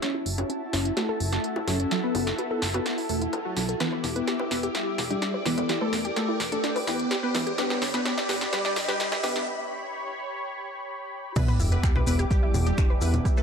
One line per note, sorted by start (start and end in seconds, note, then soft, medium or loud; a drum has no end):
0.00 1.65 F#3 medium
0.00 0.26 C#4 loud
0.00 1.65 C#4 medium
0.00 9.10 E4 medium
0.00 3.76 F#4 medium
0.00 1.65 F#4 medium
0.00 0.26 C#5 loud
0.00 3.76 E5 medium
0.00 3.76 A5 medium
0.00 snare medium
0.00 closed hi-hat medium
0.00 riser medium
0.14 0.23 E4 medium
0.26 0.44 F#1 loud
0.26 open hi-hat loud
0.38 0.62 C#4 loud
0.38 0.46 C#4 medium
0.38 4.61 A4 medium
0.38 0.62 C#5 medium
0.38 closed hi-hat medium
0.38 low conga medium
0.43 3.80 F#5 medium
0.49 0.61 C#4 medium
0.49 closed hi-hat medium
0.73 0.91 F#1 medium
0.73 0.89 C#4 medium
0.73 0.78 E4 medium
0.73 0.89 C#5 medium
0.73 snare medium
0.73 open hi-hat loud
0.85 closed hi-hat medium
0.97 1.20 A3 loud
0.97 1.06 F#4 medium
0.97 1.20 A4 medium
0.97 snare medium
0.97 closed hi-hat medium
0.97 low conga medium
1.09 1.20 A4 loud
1.20 1.38 F#1 medium
1.20 open hi-hat loud
1.32 1.56 A3 medium
1.32 1.41 F#4 loud
1.32 1.56 A4 medium
1.32 snare medium
1.32 closed hi-hat medium
1.44 closed hi-hat medium
1.56 1.65 E4 medium
1.56 low conga medium
1.68 1.86 F#1 medium
1.68 1.78 F#3 medium
1.68 1.91 C#4 medium
1.68 1.78 C#4 medium
1.68 1.78 F#4 loud
1.68 1.91 C#5 medium
1.68 snare medium
1.68 open hi-hat loud
1.80 1.88 C#4 medium
1.80 closed hi-hat medium
1.91 3.54 F#3 medium
1.91 3.54 C#4 medium
1.91 2.03 C#4 medium
1.91 3.54 F#4 medium
1.91 snare medium
1.91 closed hi-hat medium
2.03 2.27 B3 medium
2.03 2.27 B4 medium
2.15 2.33 F#1 medium
2.15 2.20 E4 medium
2.15 open hi-hat loud
2.15 low conga medium
2.27 snare medium
2.27 closed hi-hat soft
2.38 2.62 B3 medium
2.38 2.47 F#4 medium
2.38 2.62 B4 loud
2.38 closed hi-hat medium
2.51 2.62 A4 loud
2.62 2.80 F#1 medium
2.62 snare medium
2.62 open hi-hat loud
2.74 2.98 B3 loud
2.74 2.83 F#4 loud
2.74 2.98 B4 loud
2.74 closed hi-hat medium
2.74 low conga medium
2.86 snare medium
2.86 closed hi-hat medium
2.98 3.06 E4 medium
2.98 open hi-hat medium
3.09 3.28 E1 medium
3.09 3.33 A3 loud
3.09 3.33 A4 medium
3.09 open hi-hat loud
3.21 3.32 E4 medium
3.21 closed hi-hat medium
3.33 3.38 A4 medium
3.33 closed hi-hat medium
3.33 low conga medium
3.45 3.69 F#3 medium
3.45 3.69 F#4 loud
3.57 3.75 B1 medium
3.57 3.77 F#3 medium
3.57 3.77 C#4 medium
3.57 3.77 F#4 medium
3.57 3.62 F#4 medium
3.57 snare medium
3.57 open hi-hat loud
3.69 3.77 A4 medium
3.69 closed hi-hat medium
3.80 5.43 E3 medium
3.80 4.04 B3 loud
3.80 5.43 B3 medium
3.80 3.92 D4 medium
3.80 5.43 E4 loud
3.80 11.32 G4 medium
3.80 4.04 B4 loud
3.80 5.67 E5 medium
3.80 7.54 D6 medium
3.80 snare medium
3.80 closed hi-hat medium
3.80 low conga loud
3.92 3.97 B4 medium
4.04 4.22 E1 loud
4.04 4.09 E4 medium
4.04 snare medium
4.04 open hi-hat loud
4.16 4.40 B3 medium
4.16 4.40 B4 medium
4.16 8.20 D5 loud
4.16 closed hi-hat medium
4.27 4.36 G4 medium
4.27 snare medium
4.27 closed hi-hat medium
4.40 4.51 B4 loud
4.40 low conga medium
4.51 4.69 E1 medium
4.51 4.67 B3 medium
4.51 4.67 B4 medium
4.51 snare medium
4.51 open hi-hat loud
4.63 4.72 G4 loud
4.63 closed hi-hat medium
4.75 4.98 G3 medium
4.75 4.98 G4 medium
4.75 snare medium
4.75 closed hi-hat medium
4.87 4.95 E4 medium
4.98 5.16 E1 medium
4.98 9.47 G5 medium
4.98 snare medium
4.98 open hi-hat loud
4.98 low conga loud
5.10 5.34 G3 medium
5.10 5.19 D4 medium
5.10 5.34 G4 medium
5.10 closed hi-hat soft
5.22 5.34 D4 medium
5.22 snare medium
5.22 closed hi-hat medium
5.34 5.39 B4 medium
5.45 5.64 E1 loud
5.45 5.56 E3 medium
5.45 5.69 B3 loud
5.45 5.56 B3 medium
5.45 5.56 E4 loud
5.45 5.51 E4 medium
5.45 5.69 B4 loud
5.45 snare medium
5.45 open hi-hat loud
5.58 closed hi-hat medium
5.58 low conga loud
5.69 7.32 E3 medium
5.69 7.32 B3 medium
5.69 7.32 E4 medium
5.69 5.78 G4 medium
5.69 9.43 D5 medium
5.69 snare medium
5.69 closed hi-hat medium
5.81 6.05 A3 medium
5.81 6.05 A4 medium
5.81 5.92 B4 loud
5.93 6.11 E1 loud
5.93 snare medium
5.93 open hi-hat loud
6.05 6.13 G4 loud
6.05 closed hi-hat medium
6.16 6.40 A3 loud
6.16 6.40 A4 loud
6.16 snare medium
6.16 closed hi-hat medium
6.16 low conga loud
6.29 6.37 E4 medium
6.40 6.58 E1 medium
6.40 snare medium
6.40 open hi-hat loud
6.52 6.76 A3 loud
6.52 6.60 D4 medium
6.52 6.76 A4 loud
6.52 closed hi-hat medium
6.64 6.75 D4 medium
6.64 snare medium
6.64 closed hi-hat medium
6.76 6.81 B4 medium
6.76 open hi-hat medium
6.76 low conga medium
6.87 7.05 E2 medium
6.87 7.11 B3 loud
6.87 6.93 E4 medium
6.87 7.11 B4 medium
6.87 snare medium
6.87 open hi-hat loud
6.99 closed hi-hat medium
7.11 7.20 G4 medium
7.11 snare medium
7.11 closed hi-hat medium
7.23 7.47 B3 medium
7.23 7.34 B4 loud
7.23 7.47 B4 loud
7.35 7.53 E1 loud
7.35 7.45 E3 medium
7.35 7.45 B3 medium
7.35 7.45 E4 loud
7.35 snare medium
7.35 open hi-hat loud
7.35 low conga loud
7.47 7.55 G4 loud
7.47 closed hi-hat medium
7.58 9.21 G3 medium
7.58 7.82 B3 medium
7.58 9.47 D4 medium
7.58 9.21 D4 medium
7.58 9.21 G4 loud
7.58 7.82 B4 loud
7.58 11.32 B5 medium
7.58 snare loud
7.58 closed hi-hat medium
7.70 7.79 G4 medium
7.70 snare medium
7.82 8.00 G1 loud
7.82 snare medium
7.82 open hi-hat loud
7.94 8.17 B3 medium
7.94 8.02 D4 medium
7.94 8.18 B4 loud
7.94 snare medium
7.94 closed hi-hat medium
7.94 low conga medium
8.01 9.47 B4 medium
8.05 8.17 D4 medium
8.05 snare medium
8.05 closed hi-hat medium
8.18 8.23 D5 medium
8.18 snare medium
8.29 8.47 G1 medium
8.29 8.45 B3 medium
8.29 8.34 G4 medium
8.29 8.45 B4 medium
8.29 snare loud
8.29 open hi-hat loud
8.41 snare medium
8.41 closed hi-hat medium
8.52 8.76 G3 loud
8.52 8.76 G4 medium
8.52 8.61 B4 medium
8.52 snare loud
8.52 closed hi-hat medium
8.52 low conga medium
8.65 8.76 D5 loud
8.65 snare medium
8.76 8.94 G1 medium
8.76 snare loud
8.76 open hi-hat loud
8.88 9.12 G3 medium
8.88 9.12 G4 loud
8.88 8.97 B4 loud
8.88 snare medium
8.88 closed hi-hat medium
9.00 snare loud
9.00 closed hi-hat medium
9.12 9.20 G4 medium
9.12 snare medium
9.12 low conga medium
9.23 9.42 G1 medium
9.23 9.34 G3 medium
9.23 9.47 B3 medium
9.23 9.34 D4 medium
9.23 9.34 G4 loud
9.23 9.47 B4 medium
9.23 snare loud
9.23 open hi-hat loud
9.36 9.44 D4 medium
9.36 snare medium
9.36 closed hi-hat medium
9.47 11.34 C#5 medium
11.36 13.43 E2 medium
11.36 13.43 B2 medium
11.36 12.99 E3 medium
11.36 12.99 B3 medium
11.36 11.60 B3 loud
11.36 11.48 D4 medium
11.36 12.99 E4 loud
11.36 13.43 E4 medium
11.36 13.43 G4 medium
11.36 11.60 B4 loud
11.36 11.48 D5 medium
11.36 13.43 E5 medium
11.36 13.23 D6 medium
11.36 kick loud
11.36 closed hi-hat medium
11.36 crash loud
11.36 sub drop medium
11.36 low conga medium
11.36 maracas soft
11.48 11.53 B4 medium
11.48 11.53 B5 medium
11.48 maracas soft
11.57 11.78 E1 loud
11.57 11.65 E4 medium
11.57 13.43 D5 loud
11.57 11.65 E5 medium
11.57 open hi-hat loud
11.57 maracas medium
11.71 11.95 B3 loud
11.71 11.96 B4 medium
11.71 closed hi-hat medium
11.71 maracas soft
11.83 11.92 G4 medium
11.83 11.92 G5 medium
11.83 finger snap loud
11.83 kick loud
11.83 closed hi-hat medium
11.83 maracas soft
11.96 12.06 B4 loud
11.96 12.06 B5 medium
11.96 low conga medium
12.07 12.25 E1 medium
12.07 12.23 B3 medium
12.07 12.23 B4 medium
12.07 open hi-hat loud
12.07 maracas medium
12.19 12.27 G4 loud
12.19 12.27 G5 medium
12.19 closed hi-hat medium
12.19 maracas soft
12.31 12.54 G3 loud
12.31 12.54 G4 medium
12.31 kick loud
12.31 closed hi-hat medium
12.31 maracas soft
12.43 12.51 E4 medium
12.43 12.51 E5 medium
12.54 12.72 E1 loud
12.54 open hi-hat loud
12.54 low conga medium
12.54 maracas medium
12.66 12.90 G3 medium
12.66 12.75 D4 medium
12.66 12.90 G4 loud
12.66 12.75 D5 medium
12.66 closed hi-hat medium
12.66 maracas soft
12.78 12.89 D4 medium
12.78 12.89 D5 medium
12.78 finger snap loud
12.78 kick loud
12.78 closed hi-hat medium
12.78 maracas soft
12.90 12.95 B4 medium
12.90 12.95 B5 medium
13.02 13.20 E1 medium
13.02 13.22 E3 medium
13.02 13.25 B3 medium
13.02 13.22 B3 medium
13.02 13.07 E4 medium
13.02 13.22 E4 medium
13.02 13.25 B4 medium
13.02 13.07 E5 medium
13.02 open hi-hat loud
13.02 maracas medium
13.14 closed hi-hat medium
13.14 low conga medium
13.14 maracas soft
13.25 13.43 E3 medium
13.25 13.43 B3 medium
13.25 13.43 E4 medium
13.25 13.34 G4 medium
13.25 13.34 G5 medium
13.25 13.43 E6 medium
13.25 kick loud
13.25 closed hi-hat medium
13.25 maracas medium
13.37 13.43 A3 loud
13.37 13.43 A4 medium
13.37 13.43 B4 loud
13.37 13.43 B5 medium
13.37 maracas soft